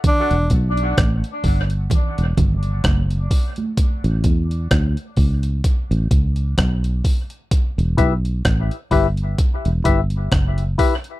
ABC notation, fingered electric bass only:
X:1
M:4/4
L:1/16
Q:"Swing 16ths" 1/4=64
K:Edor
V:1 name="Fingered electric bass" clef=bass
z E,,, B,,,2 A,,, z G,,,2 z E,,, G,,,2 F,,,2 z2 | z A,,, E,,2 D,, z C,,2 z A,,, C,,2 B,,,2 z2 | z E,,, B,,,2 A,,, z G,,,2 z E,,, G,,,2 F,,,2 z2 |]